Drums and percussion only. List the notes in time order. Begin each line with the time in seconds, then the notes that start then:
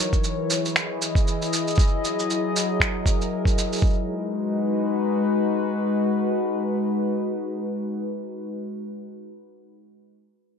0.13 kick, shaker
0.24 shaker
0.50 shaker
0.65 shaker
0.76 finger snap, shaker
1.02 shaker
1.15 kick, shaker
1.27 shaker
1.42 shaker
1.53 shaker
1.67 shaker
1.70 shaker
1.75 kick, shaker
1.79 shaker
1.83 shaker
1.87 shaker
2.05 shaker
2.19 shaker
2.30 shaker
2.56 shaker
2.80 finger snap, kick, shaker
3.06 kick, shaker
3.21 shaker
3.45 kick, shaker
3.58 shaker
3.73 shaker
3.76 shaker
3.78 shaker
3.81 kick, shaker
3.83 shaker
3.87 shaker
3.90 shaker
3.93 shaker